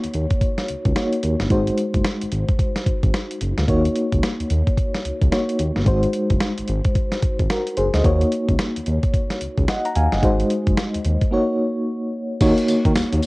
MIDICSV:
0, 0, Header, 1, 4, 480
1, 0, Start_track
1, 0, Tempo, 545455
1, 1321, Time_signature, 4, 2, 24, 8
1, 11671, End_track
2, 0, Start_track
2, 0, Title_t, "FM electric piano"
2, 0, Program_c, 0, 5
2, 0, Control_c, 0, 64, 127
2, 0, Note_on_c, 0, 58, 71
2, 0, Note_on_c, 0, 63, 68
2, 0, Note_on_c, 0, 66, 67
2, 0, Note_on_c, 0, 73, 80
2, 807, Note_off_c, 0, 58, 0
2, 811, Note_off_c, 0, 63, 0
2, 815, Note_off_c, 0, 66, 0
2, 817, Note_off_c, 0, 73, 0
2, 837, Note_on_c, 0, 58, 50
2, 842, Note_on_c, 0, 63, 47
2, 845, Note_on_c, 0, 66, 49
2, 849, Note_on_c, 0, 73, 61
2, 1308, Note_off_c, 0, 63, 0
2, 1311, Note_on_c, 0, 56, 70
2, 1315, Note_off_c, 0, 66, 0
2, 1319, Note_off_c, 0, 58, 0
2, 1319, Note_on_c, 0, 63, 61
2, 1325, Note_off_c, 0, 73, 0
2, 1326, Note_on_c, 0, 66, 65
2, 1330, Control_c, 0, 64, 0
2, 1334, Note_on_c, 0, 72, 77
2, 1510, Control_c, 0, 64, 127
2, 3201, Note_off_c, 0, 56, 0
2, 3205, Note_off_c, 0, 63, 0
2, 3208, Note_off_c, 0, 66, 0
2, 3212, Note_off_c, 0, 72, 0
2, 3232, Note_on_c, 0, 58, 72
2, 3239, Note_on_c, 0, 63, 62
2, 3247, Note_on_c, 0, 66, 63
2, 3251, Control_c, 0, 64, 0
2, 3254, Note_on_c, 0, 73, 75
2, 3397, Control_c, 0, 64, 127
2, 4648, Note_off_c, 0, 58, 0
2, 4651, Note_off_c, 0, 63, 0
2, 4655, Note_off_c, 0, 66, 0
2, 4659, Note_off_c, 0, 73, 0
2, 4676, Note_on_c, 0, 58, 52
2, 4678, Note_on_c, 0, 63, 44
2, 4683, Note_on_c, 0, 66, 48
2, 4686, Note_on_c, 0, 73, 57
2, 5146, Note_off_c, 0, 63, 0
2, 5149, Note_on_c, 0, 56, 70
2, 5154, Note_off_c, 0, 66, 0
2, 5157, Note_on_c, 0, 63, 61
2, 5158, Note_off_c, 0, 58, 0
2, 5163, Note_off_c, 0, 73, 0
2, 5164, Note_on_c, 0, 66, 66
2, 5170, Control_c, 0, 64, 0
2, 5171, Note_on_c, 0, 72, 82
2, 5326, Control_c, 0, 64, 127
2, 6574, Note_off_c, 0, 66, 0
2, 6577, Note_off_c, 0, 72, 0
2, 6600, Note_on_c, 0, 70, 62
2, 6605, Note_on_c, 0, 66, 51
2, 6801, Note_off_c, 0, 56, 0
2, 6805, Note_off_c, 0, 63, 0
2, 6828, Note_off_c, 0, 70, 0
2, 6831, Note_off_c, 0, 66, 0
2, 6842, Note_on_c, 0, 72, 65
2, 6848, Note_on_c, 0, 68, 61
2, 6982, Note_off_c, 0, 72, 0
2, 6985, Note_off_c, 0, 68, 0
2, 6990, Note_on_c, 0, 75, 60
2, 6995, Note_on_c, 0, 72, 57
2, 7073, Note_on_c, 0, 58, 69
2, 7079, Note_on_c, 0, 63, 60
2, 7086, Note_on_c, 0, 66, 65
2, 7090, Control_c, 0, 64, 0
2, 7093, Note_on_c, 0, 73, 78
2, 7217, Note_off_c, 0, 75, 0
2, 7220, Note_off_c, 0, 72, 0
2, 7220, Control_c, 0, 64, 127
2, 8523, Note_on_c, 0, 78, 65
2, 8529, Note_on_c, 0, 75, 50
2, 8662, Note_off_c, 0, 78, 0
2, 8665, Note_off_c, 0, 75, 0
2, 8672, Note_on_c, 0, 82, 64
2, 8676, Note_on_c, 0, 78, 55
2, 8723, Note_off_c, 0, 58, 0
2, 8726, Note_off_c, 0, 63, 0
2, 8730, Note_off_c, 0, 66, 0
2, 8733, Note_off_c, 0, 73, 0
2, 8758, Note_off_c, 0, 82, 0
2, 8760, Note_off_c, 0, 78, 0
2, 8764, Note_on_c, 0, 80, 74
2, 8769, Note_on_c, 0, 77, 62
2, 8903, Note_off_c, 0, 80, 0
2, 8905, Note_off_c, 0, 77, 0
2, 8913, Note_on_c, 0, 78, 63
2, 8918, Note_on_c, 0, 75, 54
2, 8994, Note_on_c, 0, 56, 72
2, 9002, Note_on_c, 0, 63, 66
2, 9008, Note_on_c, 0, 66, 66
2, 9012, Control_c, 0, 64, 0
2, 9016, Note_on_c, 0, 72, 72
2, 9139, Note_off_c, 0, 78, 0
2, 9141, Note_off_c, 0, 75, 0
2, 9141, Control_c, 0, 64, 127
2, 9938, Note_off_c, 0, 56, 0
2, 9942, Note_off_c, 0, 63, 0
2, 9945, Note_off_c, 0, 66, 0
2, 9949, Note_off_c, 0, 72, 0
2, 9953, Note_on_c, 0, 58, 68
2, 9961, Note_on_c, 0, 63, 68
2, 9967, Note_on_c, 0, 66, 69
2, 9973, Control_c, 0, 64, 0
2, 9974, Note_on_c, 0, 73, 81
2, 10121, Control_c, 0, 64, 127
2, 10898, Note_off_c, 0, 58, 0
2, 10902, Note_off_c, 0, 63, 0
2, 10904, Note_off_c, 0, 66, 0
2, 10908, Note_off_c, 0, 73, 0
2, 10919, Note_on_c, 0, 58, 88
2, 10922, Note_on_c, 0, 63, 77
2, 10925, Note_on_c, 0, 66, 79
2, 10929, Note_on_c, 0, 73, 91
2, 10934, Control_c, 0, 64, 0
2, 11098, Control_c, 0, 64, 127
2, 11671, Note_off_c, 0, 58, 0
2, 11671, Note_off_c, 0, 63, 0
2, 11671, Note_off_c, 0, 66, 0
2, 11671, Note_off_c, 0, 73, 0
2, 11671, End_track
3, 0, Start_track
3, 0, Title_t, "Analog synth bass"
3, 0, Program_c, 1, 38
3, 34, Note_on_c, 1, 39, 47
3, 69, Note_off_c, 1, 39, 0
3, 126, Note_on_c, 1, 39, 87
3, 231, Note_off_c, 1, 39, 0
3, 607, Note_on_c, 1, 37, 45
3, 665, Note_off_c, 1, 37, 0
3, 750, Note_on_c, 1, 37, 91
3, 817, Note_off_c, 1, 37, 0
3, 1085, Note_on_c, 1, 39, 88
3, 1191, Note_off_c, 1, 39, 0
3, 1232, Note_on_c, 1, 31, 85
3, 1298, Note_off_c, 1, 31, 0
3, 1322, Note_on_c, 1, 32, 108
3, 1497, Note_off_c, 1, 32, 0
3, 1710, Note_on_c, 1, 30, 92
3, 1777, Note_off_c, 1, 30, 0
3, 1953, Note_on_c, 1, 32, 46
3, 1989, Note_off_c, 1, 32, 0
3, 2045, Note_on_c, 1, 32, 100
3, 2151, Note_off_c, 1, 32, 0
3, 2523, Note_on_c, 1, 32, 44
3, 2581, Note_off_c, 1, 32, 0
3, 2671, Note_on_c, 1, 32, 92
3, 2737, Note_off_c, 1, 32, 0
3, 3004, Note_on_c, 1, 30, 85
3, 3110, Note_off_c, 1, 30, 0
3, 3151, Note_on_c, 1, 38, 102
3, 3217, Note_off_c, 1, 38, 0
3, 3242, Note_on_c, 1, 39, 105
3, 3416, Note_off_c, 1, 39, 0
3, 3632, Note_on_c, 1, 37, 89
3, 3698, Note_off_c, 1, 37, 0
3, 3872, Note_on_c, 1, 39, 45
3, 3908, Note_off_c, 1, 39, 0
3, 3965, Note_on_c, 1, 39, 91
3, 4071, Note_off_c, 1, 39, 0
3, 4446, Note_on_c, 1, 37, 49
3, 4504, Note_off_c, 1, 37, 0
3, 4591, Note_on_c, 1, 37, 87
3, 4657, Note_off_c, 1, 37, 0
3, 4924, Note_on_c, 1, 39, 87
3, 5030, Note_off_c, 1, 39, 0
3, 5072, Note_on_c, 1, 31, 86
3, 5138, Note_off_c, 1, 31, 0
3, 5161, Note_on_c, 1, 32, 109
3, 5336, Note_off_c, 1, 32, 0
3, 5548, Note_on_c, 1, 30, 90
3, 5615, Note_off_c, 1, 30, 0
3, 5794, Note_on_c, 1, 32, 48
3, 5830, Note_off_c, 1, 32, 0
3, 5885, Note_on_c, 1, 32, 103
3, 5991, Note_off_c, 1, 32, 0
3, 6358, Note_on_c, 1, 32, 46
3, 6418, Note_off_c, 1, 32, 0
3, 6507, Note_on_c, 1, 32, 91
3, 6575, Note_off_c, 1, 32, 0
3, 6844, Note_on_c, 1, 30, 83
3, 6950, Note_off_c, 1, 30, 0
3, 6990, Note_on_c, 1, 38, 100
3, 7057, Note_off_c, 1, 38, 0
3, 7080, Note_on_c, 1, 39, 117
3, 7255, Note_off_c, 1, 39, 0
3, 7470, Note_on_c, 1, 37, 88
3, 7536, Note_off_c, 1, 37, 0
3, 7713, Note_on_c, 1, 39, 47
3, 7749, Note_off_c, 1, 39, 0
3, 7804, Note_on_c, 1, 39, 85
3, 7910, Note_off_c, 1, 39, 0
3, 8285, Note_on_c, 1, 37, 43
3, 8343, Note_off_c, 1, 37, 0
3, 8429, Note_on_c, 1, 37, 87
3, 8496, Note_off_c, 1, 37, 0
3, 8765, Note_on_c, 1, 39, 92
3, 8871, Note_off_c, 1, 39, 0
3, 8912, Note_on_c, 1, 31, 102
3, 8978, Note_off_c, 1, 31, 0
3, 9002, Note_on_c, 1, 32, 112
3, 9176, Note_off_c, 1, 32, 0
3, 9390, Note_on_c, 1, 30, 93
3, 9457, Note_off_c, 1, 30, 0
3, 9633, Note_on_c, 1, 39, 46
3, 9668, Note_off_c, 1, 39, 0
3, 9722, Note_on_c, 1, 39, 83
3, 9829, Note_off_c, 1, 39, 0
3, 10921, Note_on_c, 1, 39, 116
3, 11028, Note_off_c, 1, 39, 0
3, 11164, Note_on_c, 1, 51, 50
3, 11222, Note_off_c, 1, 51, 0
3, 11311, Note_on_c, 1, 51, 102
3, 11377, Note_off_c, 1, 51, 0
3, 11403, Note_on_c, 1, 39, 50
3, 11462, Note_off_c, 1, 39, 0
3, 11551, Note_on_c, 1, 39, 90
3, 11617, Note_off_c, 1, 39, 0
3, 11671, End_track
4, 0, Start_track
4, 0, Title_t, "Drums"
4, 31, Note_on_c, 9, 42, 56
4, 119, Note_off_c, 9, 42, 0
4, 119, Note_on_c, 9, 42, 65
4, 207, Note_off_c, 9, 42, 0
4, 267, Note_on_c, 9, 42, 48
4, 270, Note_on_c, 9, 36, 81
4, 355, Note_off_c, 9, 42, 0
4, 358, Note_off_c, 9, 36, 0
4, 361, Note_on_c, 9, 36, 88
4, 362, Note_on_c, 9, 42, 60
4, 449, Note_off_c, 9, 36, 0
4, 450, Note_off_c, 9, 42, 0
4, 508, Note_on_c, 9, 38, 59
4, 510, Note_on_c, 9, 42, 52
4, 596, Note_off_c, 9, 38, 0
4, 598, Note_off_c, 9, 42, 0
4, 600, Note_on_c, 9, 42, 70
4, 688, Note_off_c, 9, 42, 0
4, 747, Note_on_c, 9, 42, 47
4, 749, Note_on_c, 9, 36, 93
4, 835, Note_off_c, 9, 42, 0
4, 837, Note_off_c, 9, 36, 0
4, 841, Note_on_c, 9, 38, 95
4, 841, Note_on_c, 9, 42, 70
4, 929, Note_off_c, 9, 38, 0
4, 929, Note_off_c, 9, 42, 0
4, 988, Note_on_c, 9, 42, 56
4, 1076, Note_off_c, 9, 42, 0
4, 1079, Note_on_c, 9, 42, 76
4, 1167, Note_off_c, 9, 42, 0
4, 1229, Note_on_c, 9, 38, 65
4, 1230, Note_on_c, 9, 42, 55
4, 1317, Note_off_c, 9, 38, 0
4, 1318, Note_off_c, 9, 42, 0
4, 1320, Note_on_c, 9, 42, 73
4, 1321, Note_on_c, 9, 36, 106
4, 1408, Note_off_c, 9, 42, 0
4, 1409, Note_off_c, 9, 36, 0
4, 1470, Note_on_c, 9, 42, 56
4, 1558, Note_off_c, 9, 42, 0
4, 1562, Note_on_c, 9, 42, 70
4, 1650, Note_off_c, 9, 42, 0
4, 1708, Note_on_c, 9, 42, 51
4, 1710, Note_on_c, 9, 36, 77
4, 1796, Note_off_c, 9, 42, 0
4, 1798, Note_off_c, 9, 36, 0
4, 1800, Note_on_c, 9, 38, 115
4, 1801, Note_on_c, 9, 42, 69
4, 1888, Note_off_c, 9, 38, 0
4, 1889, Note_off_c, 9, 42, 0
4, 1950, Note_on_c, 9, 42, 61
4, 2038, Note_off_c, 9, 42, 0
4, 2040, Note_on_c, 9, 42, 64
4, 2128, Note_off_c, 9, 42, 0
4, 2189, Note_on_c, 9, 42, 43
4, 2190, Note_on_c, 9, 36, 81
4, 2277, Note_off_c, 9, 42, 0
4, 2278, Note_off_c, 9, 36, 0
4, 2282, Note_on_c, 9, 36, 89
4, 2283, Note_on_c, 9, 42, 65
4, 2370, Note_off_c, 9, 36, 0
4, 2371, Note_off_c, 9, 42, 0
4, 2429, Note_on_c, 9, 38, 62
4, 2431, Note_on_c, 9, 42, 50
4, 2517, Note_off_c, 9, 38, 0
4, 2519, Note_off_c, 9, 42, 0
4, 2522, Note_on_c, 9, 36, 86
4, 2523, Note_on_c, 9, 42, 68
4, 2610, Note_off_c, 9, 36, 0
4, 2611, Note_off_c, 9, 42, 0
4, 2669, Note_on_c, 9, 42, 46
4, 2670, Note_on_c, 9, 36, 89
4, 2757, Note_off_c, 9, 42, 0
4, 2758, Note_off_c, 9, 36, 0
4, 2764, Note_on_c, 9, 42, 68
4, 2765, Note_on_c, 9, 38, 93
4, 2852, Note_off_c, 9, 42, 0
4, 2853, Note_off_c, 9, 38, 0
4, 2913, Note_on_c, 9, 42, 55
4, 3001, Note_off_c, 9, 42, 0
4, 3001, Note_on_c, 9, 42, 75
4, 3089, Note_off_c, 9, 42, 0
4, 3149, Note_on_c, 9, 38, 69
4, 3150, Note_on_c, 9, 42, 53
4, 3237, Note_off_c, 9, 38, 0
4, 3238, Note_off_c, 9, 42, 0
4, 3241, Note_on_c, 9, 36, 107
4, 3242, Note_on_c, 9, 42, 74
4, 3329, Note_off_c, 9, 36, 0
4, 3330, Note_off_c, 9, 42, 0
4, 3392, Note_on_c, 9, 42, 57
4, 3480, Note_off_c, 9, 42, 0
4, 3482, Note_on_c, 9, 42, 60
4, 3570, Note_off_c, 9, 42, 0
4, 3630, Note_on_c, 9, 36, 77
4, 3630, Note_on_c, 9, 42, 51
4, 3718, Note_off_c, 9, 36, 0
4, 3718, Note_off_c, 9, 42, 0
4, 3724, Note_on_c, 9, 38, 109
4, 3724, Note_on_c, 9, 42, 71
4, 3812, Note_off_c, 9, 38, 0
4, 3812, Note_off_c, 9, 42, 0
4, 3873, Note_on_c, 9, 42, 55
4, 3961, Note_off_c, 9, 42, 0
4, 3961, Note_on_c, 9, 42, 69
4, 4049, Note_off_c, 9, 42, 0
4, 4110, Note_on_c, 9, 36, 82
4, 4111, Note_on_c, 9, 42, 43
4, 4198, Note_off_c, 9, 36, 0
4, 4199, Note_off_c, 9, 42, 0
4, 4201, Note_on_c, 9, 36, 88
4, 4204, Note_on_c, 9, 42, 59
4, 4289, Note_off_c, 9, 36, 0
4, 4292, Note_off_c, 9, 42, 0
4, 4352, Note_on_c, 9, 38, 60
4, 4354, Note_on_c, 9, 42, 50
4, 4440, Note_off_c, 9, 38, 0
4, 4442, Note_off_c, 9, 42, 0
4, 4445, Note_on_c, 9, 42, 68
4, 4533, Note_off_c, 9, 42, 0
4, 4589, Note_on_c, 9, 36, 85
4, 4590, Note_on_c, 9, 42, 46
4, 4677, Note_off_c, 9, 36, 0
4, 4678, Note_off_c, 9, 42, 0
4, 4684, Note_on_c, 9, 38, 94
4, 4684, Note_on_c, 9, 42, 71
4, 4772, Note_off_c, 9, 38, 0
4, 4772, Note_off_c, 9, 42, 0
4, 4832, Note_on_c, 9, 42, 55
4, 4920, Note_off_c, 9, 42, 0
4, 4920, Note_on_c, 9, 42, 82
4, 5008, Note_off_c, 9, 42, 0
4, 5069, Note_on_c, 9, 38, 66
4, 5070, Note_on_c, 9, 42, 53
4, 5157, Note_off_c, 9, 38, 0
4, 5158, Note_off_c, 9, 42, 0
4, 5159, Note_on_c, 9, 36, 106
4, 5159, Note_on_c, 9, 42, 66
4, 5247, Note_off_c, 9, 36, 0
4, 5247, Note_off_c, 9, 42, 0
4, 5306, Note_on_c, 9, 42, 57
4, 5394, Note_off_c, 9, 42, 0
4, 5397, Note_on_c, 9, 42, 65
4, 5485, Note_off_c, 9, 42, 0
4, 5543, Note_on_c, 9, 42, 47
4, 5547, Note_on_c, 9, 36, 80
4, 5631, Note_off_c, 9, 42, 0
4, 5635, Note_off_c, 9, 36, 0
4, 5635, Note_on_c, 9, 38, 112
4, 5635, Note_on_c, 9, 42, 73
4, 5723, Note_off_c, 9, 38, 0
4, 5723, Note_off_c, 9, 42, 0
4, 5786, Note_on_c, 9, 42, 57
4, 5874, Note_off_c, 9, 42, 0
4, 5874, Note_on_c, 9, 42, 69
4, 5962, Note_off_c, 9, 42, 0
4, 6023, Note_on_c, 9, 42, 47
4, 6026, Note_on_c, 9, 36, 82
4, 6111, Note_off_c, 9, 42, 0
4, 6114, Note_off_c, 9, 36, 0
4, 6117, Note_on_c, 9, 36, 88
4, 6117, Note_on_c, 9, 42, 62
4, 6205, Note_off_c, 9, 36, 0
4, 6205, Note_off_c, 9, 42, 0
4, 6263, Note_on_c, 9, 38, 58
4, 6265, Note_on_c, 9, 42, 51
4, 6351, Note_off_c, 9, 38, 0
4, 6353, Note_off_c, 9, 42, 0
4, 6357, Note_on_c, 9, 42, 71
4, 6358, Note_on_c, 9, 36, 90
4, 6445, Note_off_c, 9, 42, 0
4, 6446, Note_off_c, 9, 36, 0
4, 6506, Note_on_c, 9, 36, 92
4, 6506, Note_on_c, 9, 42, 49
4, 6594, Note_off_c, 9, 36, 0
4, 6594, Note_off_c, 9, 42, 0
4, 6599, Note_on_c, 9, 42, 67
4, 6600, Note_on_c, 9, 38, 90
4, 6687, Note_off_c, 9, 42, 0
4, 6688, Note_off_c, 9, 38, 0
4, 6747, Note_on_c, 9, 42, 54
4, 6835, Note_off_c, 9, 42, 0
4, 6837, Note_on_c, 9, 42, 78
4, 6925, Note_off_c, 9, 42, 0
4, 6986, Note_on_c, 9, 38, 70
4, 6987, Note_on_c, 9, 42, 59
4, 7074, Note_off_c, 9, 38, 0
4, 7075, Note_off_c, 9, 42, 0
4, 7079, Note_on_c, 9, 36, 97
4, 7079, Note_on_c, 9, 42, 73
4, 7167, Note_off_c, 9, 36, 0
4, 7167, Note_off_c, 9, 42, 0
4, 7227, Note_on_c, 9, 42, 56
4, 7315, Note_off_c, 9, 42, 0
4, 7321, Note_on_c, 9, 42, 64
4, 7409, Note_off_c, 9, 42, 0
4, 7468, Note_on_c, 9, 36, 80
4, 7468, Note_on_c, 9, 42, 51
4, 7556, Note_off_c, 9, 36, 0
4, 7556, Note_off_c, 9, 42, 0
4, 7558, Note_on_c, 9, 38, 106
4, 7558, Note_on_c, 9, 42, 69
4, 7646, Note_off_c, 9, 38, 0
4, 7646, Note_off_c, 9, 42, 0
4, 7711, Note_on_c, 9, 42, 56
4, 7798, Note_off_c, 9, 42, 0
4, 7798, Note_on_c, 9, 42, 66
4, 7886, Note_off_c, 9, 42, 0
4, 7946, Note_on_c, 9, 42, 44
4, 7948, Note_on_c, 9, 36, 86
4, 8034, Note_off_c, 9, 42, 0
4, 8036, Note_off_c, 9, 36, 0
4, 8040, Note_on_c, 9, 36, 92
4, 8042, Note_on_c, 9, 42, 64
4, 8128, Note_off_c, 9, 36, 0
4, 8130, Note_off_c, 9, 42, 0
4, 8186, Note_on_c, 9, 38, 56
4, 8189, Note_on_c, 9, 42, 56
4, 8274, Note_off_c, 9, 38, 0
4, 8277, Note_off_c, 9, 42, 0
4, 8280, Note_on_c, 9, 42, 75
4, 8368, Note_off_c, 9, 42, 0
4, 8427, Note_on_c, 9, 42, 48
4, 8428, Note_on_c, 9, 36, 94
4, 8515, Note_off_c, 9, 42, 0
4, 8516, Note_off_c, 9, 36, 0
4, 8520, Note_on_c, 9, 42, 68
4, 8521, Note_on_c, 9, 38, 97
4, 8608, Note_off_c, 9, 42, 0
4, 8609, Note_off_c, 9, 38, 0
4, 8670, Note_on_c, 9, 42, 51
4, 8758, Note_off_c, 9, 42, 0
4, 8761, Note_on_c, 9, 42, 75
4, 8849, Note_off_c, 9, 42, 0
4, 8908, Note_on_c, 9, 38, 73
4, 8909, Note_on_c, 9, 42, 57
4, 8996, Note_off_c, 9, 38, 0
4, 8997, Note_off_c, 9, 42, 0
4, 9001, Note_on_c, 9, 36, 103
4, 9001, Note_on_c, 9, 42, 70
4, 9089, Note_off_c, 9, 36, 0
4, 9089, Note_off_c, 9, 42, 0
4, 9149, Note_on_c, 9, 42, 57
4, 9237, Note_off_c, 9, 42, 0
4, 9240, Note_on_c, 9, 42, 64
4, 9328, Note_off_c, 9, 42, 0
4, 9387, Note_on_c, 9, 42, 51
4, 9389, Note_on_c, 9, 36, 78
4, 9475, Note_off_c, 9, 42, 0
4, 9477, Note_off_c, 9, 36, 0
4, 9480, Note_on_c, 9, 38, 117
4, 9480, Note_on_c, 9, 42, 69
4, 9568, Note_off_c, 9, 38, 0
4, 9568, Note_off_c, 9, 42, 0
4, 9629, Note_on_c, 9, 42, 58
4, 9717, Note_off_c, 9, 42, 0
4, 9719, Note_on_c, 9, 42, 74
4, 9807, Note_off_c, 9, 42, 0
4, 9867, Note_on_c, 9, 42, 47
4, 9869, Note_on_c, 9, 36, 92
4, 9955, Note_off_c, 9, 42, 0
4, 9957, Note_off_c, 9, 36, 0
4, 10918, Note_on_c, 9, 42, 75
4, 10918, Note_on_c, 9, 49, 106
4, 10918, Note_on_c, 9, 54, 74
4, 10919, Note_on_c, 9, 36, 115
4, 11006, Note_off_c, 9, 42, 0
4, 11006, Note_off_c, 9, 49, 0
4, 11006, Note_off_c, 9, 54, 0
4, 11007, Note_off_c, 9, 36, 0
4, 11068, Note_on_c, 9, 42, 66
4, 11156, Note_off_c, 9, 42, 0
4, 11160, Note_on_c, 9, 54, 76
4, 11162, Note_on_c, 9, 42, 76
4, 11248, Note_off_c, 9, 54, 0
4, 11250, Note_off_c, 9, 42, 0
4, 11309, Note_on_c, 9, 36, 83
4, 11309, Note_on_c, 9, 42, 55
4, 11397, Note_off_c, 9, 36, 0
4, 11397, Note_off_c, 9, 42, 0
4, 11399, Note_on_c, 9, 54, 102
4, 11401, Note_on_c, 9, 38, 118
4, 11401, Note_on_c, 9, 42, 81
4, 11487, Note_off_c, 9, 54, 0
4, 11489, Note_off_c, 9, 38, 0
4, 11489, Note_off_c, 9, 42, 0
4, 11550, Note_on_c, 9, 42, 63
4, 11637, Note_on_c, 9, 46, 71
4, 11638, Note_off_c, 9, 42, 0
4, 11640, Note_on_c, 9, 54, 75
4, 11671, Note_off_c, 9, 46, 0
4, 11671, Note_off_c, 9, 54, 0
4, 11671, End_track
0, 0, End_of_file